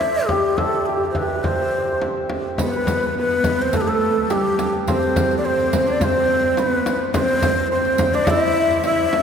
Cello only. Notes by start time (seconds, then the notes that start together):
2.58 B3
3.17 B3
3.58 C4
3.72 A3
3.85 A3
4.21 A3
4.27 G3
4.87 C4
5.43 C4
5.86 D4
5.99 C4
6.56 C4
6.67 B3
7.13 C4
7.69 C4
8.14 D4
8.26 E4
8.85 E4